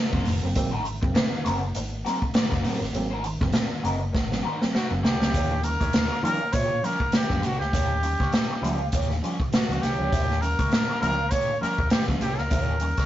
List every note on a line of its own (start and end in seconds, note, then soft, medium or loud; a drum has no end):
0.13 0.25 F#1 medium
0.13 0.24 F#3 medium
0.13 0.24 A#3 medium
0.13 0.24 C4 medium
0.13 0.26 F#4 medium
0.13 0.26 A#4 medium
0.13 0.27 C5 medium
0.13 kick medium
0.25 0.41 F1 medium
0.25 0.40 G#2 medium
0.25 0.40 D#3 soft
0.25 muted overdriven electric guitar stroke soft
0.25 snare soft
0.25 open hi-hat medium
0.42 0.56 F#1 medium
0.42 0.53 F#3 medium
0.42 0.54 A#3 medium
0.42 0.54 C4 medium
0.42 muted overdriven electric guitar stroke soft
0.55 1.03 G#1 loud
0.55 0.70 F#3 loud
0.55 0.70 A#3 medium
0.55 0.70 C4 loud
0.55 muted overdriven electric guitar stroke medium
0.55 kick loud
0.55 closed hi-hat loud
0.71 0.83 F#4 medium
0.71 0.84 A#4 medium
0.71 0.84 C5 medium
0.84 0.99 G#2 medium
0.84 0.99 D#3 soft
0.84 muted overdriven electric guitar stroke soft
0.84 closed hi-hat medium
1.02 1.14 F#1 medium
1.02 1.13 F#3 medium
1.02 1.13 A#3 medium
1.02 1.13 C4 medium
1.02 muted overdriven electric guitar stroke medium
1.02 kick loud
1.14 1.29 A#3 medium
1.14 1.29 C4 medium
1.14 muted overdriven electric guitar stroke soft
1.14 snare loud
1.14 closed hi-hat medium
1.32 1.43 G#2 medium
1.32 1.43 D#3 medium
1.45 1.72 F#1 medium
1.45 1.59 A#3 medium
1.45 1.59 C4 medium
1.45 1.58 F#4 medium
1.45 1.59 A#4 medium
1.45 1.59 C5 medium
1.45 closed hi-hat medium
1.62 muted overdriven electric guitar stroke soft
1.75 2.02 G#1 loud
1.75 1.89 G#2 medium
1.75 1.89 D#3 soft
1.75 muted overdriven electric guitar stroke soft
1.75 closed hi-hat loud
2.05 2.19 F#3 medium
2.05 2.19 A#3 medium
2.05 2.19 C4 medium
2.05 2.18 F#4 medium
2.05 2.19 A#4 medium
2.05 2.19 C5 medium
2.05 snare soft
2.05 closed hi-hat medium
2.21 2.28 A#3 soft
2.21 2.28 C4 soft
2.21 muted overdriven electric guitar stroke soft
2.21 kick medium
2.34 2.49 G#2 medium
2.34 2.49 D#3 medium
2.34 2.51 F#4 medium
2.34 2.51 A#4 medium
2.34 2.49 C5 loud
2.34 snare loud
2.34 closed hi-hat medium
2.51 2.64 F#1 medium
2.51 muted overdriven electric guitar stroke soft
2.51 kick medium
2.51 snare soft
2.63 2.79 F#3 medium
2.63 2.79 A#3 medium
2.63 2.79 C4 medium
2.63 2.77 F#4 medium
2.63 2.77 A#4 medium
2.63 2.78 C5 medium
2.63 open hi-hat medium
2.80 2.93 G#1 medium
2.80 2.88 A#3 soft
2.80 2.87 C4 medium
2.80 muted overdriven electric guitar stroke soft
2.80 snare soft
2.93 3.35 G#1 loud
2.93 3.08 F#3 loud
2.93 3.09 A#3 medium
2.93 3.09 C4 loud
2.93 muted overdriven electric guitar stroke soft
2.93 closed hi-hat loud
3.10 3.23 F#4 medium
3.10 3.24 A#4 medium
3.10 3.24 C5 medium
3.24 3.39 G#2 medium
3.24 3.39 D#3 medium
3.24 muted overdriven electric guitar stroke soft
3.24 closed hi-hat medium
3.41 3.53 F#1 medium
3.41 3.52 F#3 medium
3.41 3.52 A#3 medium
3.41 3.53 C4 medium
3.41 muted overdriven electric guitar stroke soft
3.41 kick loud
3.41 snare soft
3.52 3.68 A#3 medium
3.52 3.68 C4 medium
3.52 muted overdriven electric guitar stroke soft
3.52 snare loud
3.52 closed hi-hat medium
3.72 3.82 G#2 medium
3.72 3.82 D#3 medium
3.84 4.11 F#1 medium
3.84 3.98 A#3 medium
3.84 3.98 C4 medium
3.84 3.97 F#4 medium
3.84 3.98 A#4 medium
3.84 3.98 D#5 medium
3.84 closed hi-hat medium
4.00 muted overdriven electric guitar stroke soft
4.13 4.41 G#1 loud
4.13 muted overdriven electric guitar stroke soft
4.13 kick loud
4.13 snare medium
4.31 4.42 F#3 medium
4.31 4.42 A#3 medium
4.31 4.42 C4 medium
4.31 snare medium
4.43 4.58 G#2 soft
4.43 4.58 D#3 medium
4.43 4.57 F#4 medium
4.43 4.57 A#4 medium
4.43 4.57 C5 medium
4.61 4.72 F#3 medium
4.61 4.72 A#3 medium
4.61 4.72 C4 medium
4.61 muted overdriven electric guitar stroke medium
4.61 snare medium
4.73 4.90 F#4 medium
4.73 4.88 F#4 medium
4.73 4.91 A#4 loud
4.73 4.89 C5 medium
4.73 snare medium
4.90 5.02 F#1 loud
4.90 5.01 F#3 medium
4.90 5.01 A#3 medium
4.90 5.02 C4 medium
4.90 muted overdriven electric guitar stroke medium
5.03 5.18 C2 medium
5.03 5.18 G#2 medium
5.03 5.18 D#3 medium
5.03 5.16 F#4 medium
5.03 5.65 G4 medium
5.03 5.17 A#4 medium
5.03 5.17 C5 medium
5.03 snare loud
5.20 5.32 C#2 medium
5.20 5.31 F#3 medium
5.20 5.32 A#3 medium
5.20 5.32 C4 medium
5.20 muted overdriven electric guitar stroke soft
5.20 snare loud
5.34 5.75 D#2 loud
5.34 5.47 D#3 medium
5.34 5.50 F4 medium
5.34 5.51 G4 medium
5.34 5.51 C#5 loud
5.34 kick loud
5.34 closed hi-hat loud
5.63 5.77 G3 medium
5.63 5.77 C#4 medium
5.63 6.22 A#4 loud
5.63 muted overdriven electric guitar stroke soft
5.63 closed hi-hat medium
5.80 5.92 D#2 medium
5.80 5.92 F4 medium
5.80 5.91 G4 medium
5.80 5.91 C#5 medium
5.80 kick loud
5.80 closed hi-hat medium
5.93 6.08 D#2 medium
5.93 muted overdriven electric guitar stroke soft
5.93 snare loud
5.93 closed hi-hat medium
6.10 muted overdriven electric guitar stroke soft
6.23 6.38 D#3 medium
6.23 6.37 F3 medium
6.23 6.37 G3 medium
6.23 6.37 C#4 loud
6.23 6.40 F4 medium
6.23 6.40 G4 medium
6.23 6.54 A#4 loud
6.23 6.40 C#5 medium
6.23 closed hi-hat medium
6.41 muted overdriven electric guitar stroke medium
6.53 6.80 A#2 loud
6.53 6.74 F4 medium
6.53 6.71 G4 medium
6.53 6.86 C#5 loud
6.53 kick loud
6.53 closed hi-hat medium
6.57 6.70 C#5 medium
6.71 muted overdriven electric guitar stroke soft
6.82 6.96 F3 medium
6.82 6.96 G3 medium
6.82 6.96 C#4 medium
6.82 6.96 F4 medium
6.82 6.97 G4 medium
6.82 7.14 A#4 medium
6.82 6.97 C#5 medium
6.82 snare soft
6.82 closed hi-hat medium
7.00 muted overdriven electric guitar stroke soft
7.00 kick medium
7.12 7.27 D#3 soft
7.12 7.46 G4 medium
7.12 muted overdriven electric guitar stroke soft
7.12 snare loud
7.12 closed hi-hat medium
7.29 7.42 F#2 medium
7.29 7.40 F3 medium
7.29 7.40 G3 medium
7.29 7.40 C#4 medium
7.29 muted overdriven electric guitar stroke soft
7.29 kick medium
7.29 snare soft
7.42 7.60 C2 medium
7.42 7.50 G3 soft
7.42 7.50 C#4 soft
7.42 7.59 F4 medium
7.42 7.58 F#4 medium
7.42 7.60 G4 medium
7.42 7.59 C#5 medium
7.42 closed hi-hat medium
7.59 7.72 C#2 medium
7.59 9.08 G4 medium
7.59 muted overdriven electric guitar stroke medium
7.59 snare soft
7.73 8.14 D#2 loud
7.73 7.86 D#3 medium
7.73 7.89 F4 medium
7.73 7.90 G4 medium
7.73 7.90 C#5 loud
7.73 kick loud
7.73 closed hi-hat loud
8.02 8.16 G3 medium
8.02 8.16 C#4 medium
8.02 muted overdriven electric guitar stroke soft
8.02 closed hi-hat medium
8.20 8.32 C#2 medium
8.20 8.31 F4 medium
8.20 8.31 G4 medium
8.20 8.30 C#5 medium
8.20 kick loud
8.20 snare soft
8.32 muted overdriven electric guitar stroke soft
8.32 snare loud
8.32 closed hi-hat medium
8.51 muted overdriven electric guitar stroke soft
8.62 8.88 C#2 medium
8.62 8.76 F3 loud
8.62 8.76 G3 medium
8.62 8.76 C#4 loud
8.62 8.83 F4 medium
8.62 8.81 G4 medium
8.62 8.80 C#5 medium
8.62 closed hi-hat medium
8.81 muted overdriven electric guitar stroke soft
8.92 9.19 D#2 loud
8.92 9.09 F4 medium
8.92 9.10 G4 medium
8.92 9.10 C#5 medium
8.92 kick loud
8.92 closed hi-hat medium
9.11 muted overdriven electric guitar stroke medium
9.11 snare soft
9.22 9.36 F3 medium
9.22 9.36 G3 medium
9.22 9.36 C#4 medium
9.22 9.36 F4 medium
9.22 9.37 G4 medium
9.22 9.37 C#5 medium
9.22 closed hi-hat medium
9.40 muted overdriven electric guitar stroke soft
9.40 kick medium
9.52 9.83 F#4 medium
9.52 muted overdriven electric guitar stroke soft
9.52 snare loud
9.52 closed hi-hat medium
9.69 9.81 C#2 medium
9.69 9.80 F3 medium
9.69 9.80 G3 medium
9.69 9.80 C#4 medium
9.69 muted overdriven electric guitar stroke soft
9.69 closed hi-hat medium
9.82 9.97 C2 medium
9.82 9.96 D#3 medium
9.82 9.96 F4 medium
9.82 10.43 G4 loud
9.82 9.96 G4 medium
9.82 9.97 C#5 medium
9.82 snare soft
9.82 closed hi-hat medium
9.98 10.11 C#2 medium
9.98 10.09 F3 medium
9.98 10.09 G3 medium
9.98 10.10 C#4 medium
9.98 10.10 G4 medium
9.98 10.10 C#5 medium
10.02 10.11 F4 medium
10.12 10.53 D#2 loud
10.12 10.26 D#3 medium
10.12 10.33 F4 medium
10.12 10.34 G4 medium
10.12 10.34 C#5 medium
10.12 kick loud
10.12 closed hi-hat loud
10.30 snare soft
10.41 10.55 G3 medium
10.41 10.55 C#4 medium
10.41 11.00 A#4 loud
10.41 muted overdriven electric guitar stroke soft
10.41 closed hi-hat medium
10.59 10.71 C#2 medium
10.59 10.70 F4 soft
10.59 10.69 G4 medium
10.59 10.69 C#5 medium
10.59 kick loud
10.59 closed hi-hat medium
10.72 muted overdriven electric guitar stroke soft
10.72 snare loud
10.72 closed hi-hat medium
10.90 muted overdriven electric guitar stroke medium
11.00 11.28 C#2 medium
11.00 11.15 F3 loud
11.00 11.15 G3 medium
11.00 11.16 C#4 loud
11.00 11.22 F4 medium
11.00 11.19 G4 medium
11.00 11.32 A#4 loud
11.00 11.18 C#5 medium
11.00 closed hi-hat medium
11.19 muted overdriven electric guitar stroke soft
11.30 11.48 F4 medium
11.30 11.49 G4 medium
11.30 11.60 C#5 loud
11.30 11.48 C#5 medium
11.30 kick loud
11.30 closed hi-hat loud
11.49 muted overdriven electric guitar stroke soft
11.61 11.75 F3 medium
11.61 11.75 G3 medium
11.61 11.75 C#4 medium
11.61 11.74 F4 medium
11.61 11.75 G4 medium
11.61 11.89 A#4 medium
11.61 11.75 C#5 medium
11.61 muted fingered electric bass stroke soft
11.61 snare soft
11.61 closed hi-hat medium
11.78 11.90 D#2 medium
11.78 muted overdriven electric guitar stroke medium
11.78 kick medium
11.90 12.05 D#3 medium
11.90 12.05 G4 medium
11.90 muted overdriven electric guitar stroke soft
11.90 snare loud
11.90 closed hi-hat medium
12.08 12.20 C#2 medium
12.08 12.18 F3 medium
12.08 12.18 G3 medium
12.08 12.19 C#4 medium
12.08 muted overdriven electric guitar stroke medium
12.08 kick medium
12.08 snare soft
12.21 12.39 C2 medium
12.21 12.28 G3 soft
12.21 12.28 C#4 soft
12.21 12.38 F4 medium
12.21 12.39 G4 medium
12.21 12.38 G4 loud
12.21 12.37 C#5 medium
12.21 closed hi-hat medium
12.38 12.50 C#2 medium
12.38 13.06 A#4 medium
12.38 muted overdriven electric guitar stroke soft
12.38 snare soft
12.51 12.92 D#2 loud
12.51 12.65 D#3 medium
12.51 12.71 F4 loud
12.51 12.72 G4 medium
12.51 12.72 C#5 loud
12.51 kick loud
12.51 closed hi-hat loud
12.80 12.94 G3 medium
12.80 12.95 C#4 medium
12.80 muted overdriven electric guitar stroke soft
12.80 closed hi-hat medium
12.97 13.06 C#2 medium
12.97 13.06 F4 medium
12.97 13.06 G4 medium
12.97 13.06 C#5 medium
12.97 kick medium
12.97 snare soft
12.97 closed hi-hat medium